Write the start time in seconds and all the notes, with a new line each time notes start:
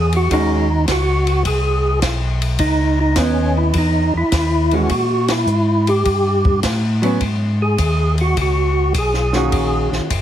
Already playing: E2 G#4
0.12 F#4, ride
0.30 D#2 D#3 G#3 C#4 D#4 F#4, kick, ride
0.88 C#2 F#4, kick, snare, hi-hat pedal, ride
1.27 ride
1.45 C2 G#4, kick, ride
2.02 B1, kick, snare, hi-hat pedal, ride
2.42 ride
2.59 C#2 D#4, kick, ride
3.00 D#4
3.16 D#2 B3 C#4 D#4, kick, snare, hi-hat pedal, ride
3.57 E4
3.73 E2, kick, ride
3.78 D#4
4.14 E2 E4
4.32 D#2, kick, snare, hi-hat pedal, ride
4.71 E3 G#3 C#4 F#4, ride
4.89 A#2, kick, ride
5.28 E4, snare, ride
5.46 G#2, hi-hat pedal
5.87 G4, ride
6.05 G2, kick, ride
6.45 kick
6.63 A2, kick, snare, hi-hat pedal, ride
7.02 F#3 B3 C#4, ride
7.21 G#2, kick, ride
7.62 G#4
7.78 D#2, kick, hi-hat pedal, ride
8.18 F#4, ride
8.36 C#2, kick, ride
8.41 F#4
8.94 B1 G#4, kick, hi-hat pedal, ride
9.14 snare
9.33 D#3 A#3 C#4 F#4, snare
9.52 A#1, kick, ride
9.91 A#1, snare
10.10 F#1, kick, hi-hat pedal, ride